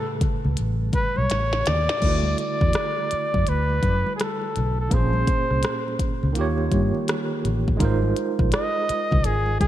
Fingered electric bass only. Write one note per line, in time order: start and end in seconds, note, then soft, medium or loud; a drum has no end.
0.22 muted fingered electric bass stroke soft
0.45 0.57 C#2 medium
0.60 0.90 A1 medium
1.18 1.29 B1 medium
1.31 1.62 A1 medium
1.68 1.86 D#2 medium
2.03 2.34 D2 medium
2.62 2.74 E2 medium
3.13 muted fingered electric bass stroke soft
3.35 3.46 F#2 medium
3.49 3.79 D2 medium
3.84 4.02 F#2 medium
4.57 4.87 B1 medium
4.92 5.23 A#1 medium
5.51 5.62 C2 medium
6.00 muted fingered electric bass stroke soft
6.23 6.35 C#2 medium
6.37 6.67 D#2 medium
6.72 6.91 G2 medium
7.45 7.76 A1 medium
7.81 8.12 G#1 loud
8.40 8.52 A#1 medium
8.90 muted fingered electric bass stroke soft
9.13 9.24 C2 medium
9.26 9.56 G#1 medium
9.61 9.68 C2 medium